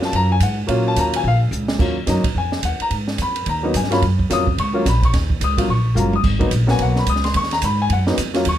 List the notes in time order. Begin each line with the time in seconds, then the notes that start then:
Already playing: F2 F#3 A#3 C#4 F4
0.02 A5, snare
0.12 F#2 A#5, kick, ride
0.32 G#5
0.40 G#2 F#5, kick, hi-hat pedal, ride
0.67 A#2 F#3 A#3 C#4 F4, kick, ride
0.88 A5
0.96 D#2 A#5, kick, hi-hat pedal, ride
1.14 G#5, ride
1.24 A#1 F5, kick
1.51 C#2, hi-hat pedal
1.68 snare
1.78 D#2 F#3 A#3 C#4 F4, kick, crash
2.06 F#2 F#3 A#3 C#4 D#4 A#5, kick, snare, hi-hat pedal, ride
2.24 muted upright bass stroke, kick, ride
2.35 F2 G#5, kick
2.52 snare
2.63 D#2 F#5, kick, hi-hat pedal, ride
2.80 A#5, muted upright bass stroke, ride
2.90 G#2, kick, ride
3.08 snare
3.18 F2 B5, kick, hi-hat pedal, ride
3.36 ride
3.46 D#2 A#5, kick, ride
3.63 F#3 A#3 B3 D#4
3.74 G2 G#5, kick, hi-hat pedal, ride
3.84 snare
3.90 F#3 A#3 C#4 F4 B5, snare, ride
4.02 F#2, kick, ride
4.19 kick
4.30 F2 F#3 A#3 C#4 F4 D#6, kick, snare, hi-hat pedal, ride
4.47 kick
4.58 C#2 C#6, kick, ride
4.73 F#3 A#3 C#4 F4
4.85 A#1 B5, kick, snare, hi-hat pedal, ride
5.03 C#6, kick, ride
5.13 D#2, kick, snare, ride
5.30 kick
5.41 C#2 D#6, kick, hi-hat pedal, ride
5.57 F#3 A#3 C#4 F4, kick, ride
5.68 A#1 C#6, kick
5.95 F#1 F#3 A#3 C#4 F4 A#5, hi-hat pedal, high tom
6.13 D#6, high tom
6.24 G#1, kick, crash
6.39 F#3 A#3 B3 D#4, kick, ride
6.51 A#1, kick, hi-hat pedal, ride
6.67 F#3 A#3 B3 F#4, snare
6.71 G#5
6.79 B1 F#5, kick, ride
6.96 B5, snare
7.06 C#2 D#6, kick, hi-hat pedal, ride
7.16 snare
7.24 C6, snare, ride
7.34 D#2 C#6, kick, ride
7.43 snare
7.51 A#5, snare, ride
7.62 G#2 B5, kick, hi-hat pedal, ride
7.82 G#5
7.90 F#2 F#5, kick, ride
8.06 F#3 A#3 B3 D#4, snare
8.17 F2, kick, hi-hat pedal, ride
8.34 F#3 A#3 C#4 F4, snare, ride
8.45 D#2 C#6, kick, ride